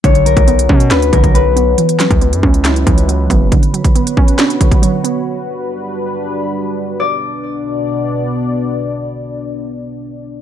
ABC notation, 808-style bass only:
X:1
M:4/4
L:1/16
Q:1/4=138
K:Bm
V:1 name="808-style bass" clef=bass
B,,,3 B,,,3 B,,2 D,,2 B,,,6 | z3 C,,2 F,, C,,4 C,,4 F,,,2 | z16 | z16 |
z16 | z16 |]